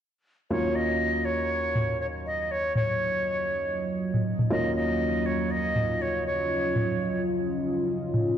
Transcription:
0.50 D#2 F#3 A#3 C#4 F4 C#5 D#5
0.75 D#5
1.25 C#5
1.75 mid tom
2.01 C#5
2.26 D#5
2.51 C#5
2.75 C#5, mid tom
4.14 mid tom
4.39 mid tom
4.50 D#2 F#3 A#3 C#4 F4 D#5
4.76 D#5
5.26 C#5
5.51 D#5
5.76 mid tom
6.02 C#5
6.27 C#5
6.76 mid tom
8.14 mid tom

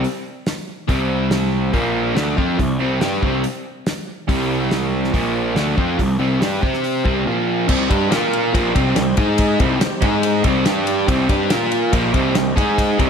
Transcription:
0.04 open hi-hat
0.46 snare, open hi-hat
0.88 C2 C3 G3 C4, kick, open hi-hat
1.31 snare, open hi-hat
1.73 A#1 A#2 F3 A#3, kick, open hi-hat
2.16 D2 D3 A3 D4, snare, open hi-hat
2.37 F2 F3 C4 F4, kick
2.58 C2 C3 G3, kick, open hi-hat
2.80 C2 C3 G3 C4
3.01 G2 G3 D4 G4, snare, open hi-hat
3.22 C2 C3 G3 C4, kick
3.44 open hi-hat
3.86 snare, open hi-hat
4.28 C2 C3 G3 C4, kick, open hi-hat
4.71 snare, open hi-hat
5.04 snare
5.13 A#1 A#2 F3 A#3, kick, open hi-hat
5.55 D2 D3 A3 D4, snare, open hi-hat
5.77 F2 F3 C4 F4, kick
5.99 C2 C3 G3, kick, open hi-hat
6.19 C2 C3 G3 C4
6.40 G2 G3 D4 G4, snare, open hi-hat
6.62 C3 C4 G4 C5, kick
6.74 snare
6.84 open hi-hat
7.04 C2 C3 G3 C4, kick
7.26 A#2 F3 A#3
7.68 C2 C3 G3 C4 D#4 G4, kick, crash
7.72 C5 D#5
7.89 G2 G3 D4 G4, kick, ride
8.10 A#2 A#3 F4 A#4 F5, snare, ride
8.33 ride
8.53 A#1 A#2 F3 A#3 C4 D#4 G4 C5, kick, ride
8.75 C2 C3 G3 C4, kick, ride
8.95 C2 C3 G3, snare, ride
9.17 G#2 G#3 D#4 G#4 D#5, kick, ride
9.38 kick, ride
9.59 C2 C3 G3 C4 D#4 G4 C5, kick, ride
9.81 muted overdriven electric guitar stroke, snare, ride
10.01 G#2 G#3 D#4 G#4 D#5, kick, ride
10.23 ride
10.44 C2 C3 G3 C4, kick, ride
10.65 G2 G3 D4 G4 D5, snare, ride
10.87 ride
11.07 C2 C3 G3 C4 D#4 G4 C5, kick, ride
11.29 G2 G3 D4 G4, kick, ride
11.50 A#2 A#3 F4 A#4 F5, snare, ride
11.72 ride
11.92 A#1 A#2 F3 A#3 D#4 G4 C5 D#5, kick, ride
12.13 C2 C3 G3 C4, kick, ride
12.35 C2 C3 G3, snare, ride
12.56 G#2 G#3 D#4 G#4 D#5 G#5, kick, ride
12.78 kick, ride
12.98 C2 C3 G3 C4 D#4 G4 C5 D#5, kick, ride

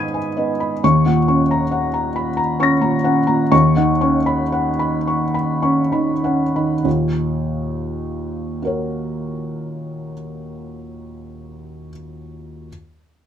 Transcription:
Already playing: G#2 D#3 B3 D#5 G#5 B5 D#6 G#6 D#7
0.14 G#5
0.37 B3 D#5
0.60 B5
0.84 D#2 C#6
1.06 A#2 F#5
1.28 C#4 C#6
1.51 A#5
1.71 F#5
1.94 A#5
2.16 B5
2.37 A#5
2.59 C#4 C#6 A#6
2.81 A#2 A#5
3.04 C#4 F#5
3.27 A#2 A#5
3.52 D#2 C#6
3.76 D#3 F#5
4.01 C#4 C#6
4.26 B5
4.52 F#5
4.79 B5
5.07 C#6
5.34 B5
5.62 C#4 C#6
5.92 D#3 B5
6.24 C#4 F#5
6.56 D#3 B5
6.84 D#2 A#2
8.62 F#4 A#4
8.67 C#5

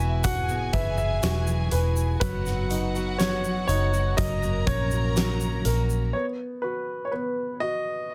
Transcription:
Already playing: E1 E3 B3 E4 F#4 B4 E5 G#5
0.00 B3 E4 F#4
0.23 F#4 G#4 F#5 G#5, kick, closed hi-hat, shaker
0.48 B3 E4 F#4, shaker
0.73 F#1 E3 B3 E4 F#4 B4 E5, kick, closed hi-hat
0.97 B3 E4 F#4 E5, shaker
1.23 E1 E3 B3 E4 F#4, snare, closed hi-hat, shaker
1.47 shaker
1.71 E1 E3 B3 E4 F#4 B4, closed hi-hat, shaker
1.96 shaker
2.20 F#1 F#2 D#3 F#3 B3 D#4 F#4 B4 F#5, kick, closed hi-hat, shaker
2.46 F#3 B3 D#4 F#4, snare, shaker
2.70 F#3 B3 D#4 F#4, closed hi-hat, shaker
2.95 F#3 B3 D#4 F#4, shaker
3.18 F#2 D#3 F#3 B3 D#4 F#4 C#5, snare, closed hi-hat, shaker
3.44 F#3 B3 D#4 F#4, shaker
3.67 F#1 D#4 C#5, closed hi-hat, shaker
3.93 F#3 B3 D#4 F#4, shaker
4.17 F#1 F#2 C#3 F#3 A#3 C#4 F#4 A#4 D#5 A#5, kick, closed hi-hat, shaker
4.42 F#3 A#3 C#4 F#4, shaker
4.67 A#1 F#3 A#3 C#4 F#4 C#5, kick, closed hi-hat
4.91 F#3 A#3 C#4 F#4, shaker
5.16 F#2 C#3 F#3 A#3 C#4 F#4, snare, closed hi-hat, shaker
5.40 shaker
5.65 A#1 F#3 A#3 C#4 F#4 A#4, closed hi-hat, shaker
5.90 shaker
6.13 B3 C#5
6.62 F#4 B4
7.05 C#5
7.12 B3 B4
7.60 F#4 D#5

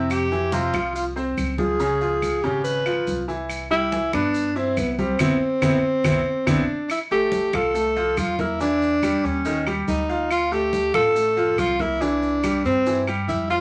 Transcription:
Already playing: F2 C3 C4 E4
0.10 G4, high conga, claves, maracas
0.32 E3 E4, high conga, maracas
0.52 C3 C4 F4, high conga, maracas
0.74 C2 F3 F4, high conga, claves, maracas
0.95 F4, high conga, maracas
1.16 C4 C5, high conga, maracas
1.37 C#2, high conga, claves, maracas
1.58 F3 F4 G#4, high conga, maracas
1.80 C#3 C#4, maracas
2.01 F3 F4, high conga, maracas
2.22 high conga, claves, maracas
2.42 G#1 C#3 C#4 G4, high conga, maracas
2.64 B4, high conga, maracas
2.86 F3 F4, high conga, claves, maracas
3.07 C2, high conga, maracas
3.28 E3 E4, high conga, maracas
3.49 high conga, claves, maracas
3.70 G3 E4 G4, high conga, maracas
3.92 E3 E4, high conga, maracas
4.13 G2 B3 D4 B4, high conga, claves, maracas
4.34 high conga, maracas
4.55 C4 E4 E5, high conga, maracas
4.77 C2 B3, high conga, claves, maracas
4.92 B3
4.98 G3 C4 G4, high conga, maracas
5.19 C2 B3 C4 E4, low conga, claves, maracas
5.62 C2 B3 C4 E4, low conga, claves, maracas
6.04 C2 B3 C4 E4, low conga, claves, maracas
6.47 C2 B3 C4 D4 E4, low conga, claves, maracas
6.90 E4, high conga, claves, maracas
7.11 A3 G4 A4, high conga, maracas
7.32 high conga, maracas
7.53 C2 F4 A4 F5, high conga, claves, maracas
7.74 A3 A4, high conga, maracas
7.96 F3 F4, high conga, maracas
8.17 E2 F4, high conga, claves, maracas
8.39 A#3 E4 A#4, high conga, maracas
8.60 E3 D4 E4, high conga, maracas
8.82 high conga, maracas
9.03 G3 G4, high conga, claves, maracas
9.24 D#2 C#4, high conga, maracas
9.45 D#3 D#4, high conga, maracas
9.67 G3 G4, high conga, claves, maracas
9.87 D2 D#4, high conga, maracas
10.09 F4 F5, high conga, maracas
10.31 F4, high conga, claves, maracas
10.52 A3 G4 A4, high conga, maracas
10.73 high conga, maracas
10.94 A1 F4 A4 F5, high conga, claves, maracas
11.15 A3 A4, high conga, maracas
11.37 F3 F4, high conga, maracas
11.58 C2 F4, high conga, claves, maracas
11.79 A#3 E4 A#4, high conga, maracas
12.01 E3 D4 E4, high conga, maracas
12.22 high conga, maracas
12.43 G3 G4, high conga, claves, maracas
12.64 G2 C4, high conga, maracas
12.86 E3 E4, high conga, maracas
13.07 G3 G4, high conga, claves, maracas
13.28 F2 E4, high conga, maracas
13.50 F4 F5, high conga, maracas

